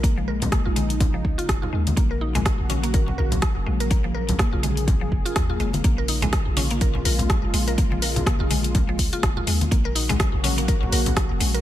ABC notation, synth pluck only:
X:1
M:4/4
L:1/16
Q:"Swing 16ths" 1/4=124
K:Bbm
V:1 name="Synth pluck"
B, F, B z B, F A, z2 F, z F z F A, z | B, B E A, A, z D B, B z B z3 A, B | B, F, B z B, F A, z2 F, z F z F A, z | B, B E A, A, z D B, B z B z3 A, B |
B, F, B z B, F A, z2 F, z F z F A, z | B, B E A, A, z D B, B z B z3 A, B |]